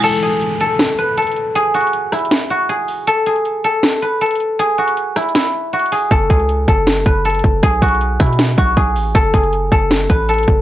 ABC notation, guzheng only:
X:1
M:4/4
L:1/8
Q:1/4=158
K:F#m
V:1 name="Guzheng"
A G2 A2 B A2 | G F2 E2 F G2 | A G2 A2 B A2 | G F2 E E2 F G |
A G2 A2 B A2 | G F2 E2 F G2 | A G2 A2 B A2 |]